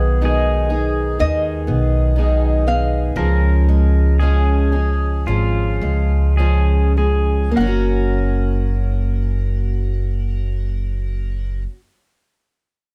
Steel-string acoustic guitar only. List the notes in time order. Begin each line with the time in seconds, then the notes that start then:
Already playing: D#3 B3
0.22 D#3
0.70 D#4
1.19 D#3
1.67 B3
2.16 D#3
2.67 B3
3.16 F3
3.69 G#3
4.20 F3
4.72 C#4
5.28 F3
5.83 G#3
6.40 F3
6.97 G#3
7.51 A#3
7.60 C#4
7.67 F#4